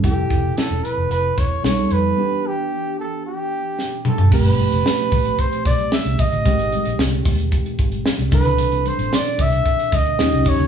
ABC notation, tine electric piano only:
X:1
M:4/4
L:1/8
Q:1/4=112
K:C
V:1 name="Tine electric piano"
[F,CEGA]6 [G,B,^DA]2 | [E,B,DG]8 | [F,A,CG]8 | [_E,_A,CG]6- [E,A,CG] [=E,CD=A]- |
[E,CDA]6 [F,_D_EG]2 |]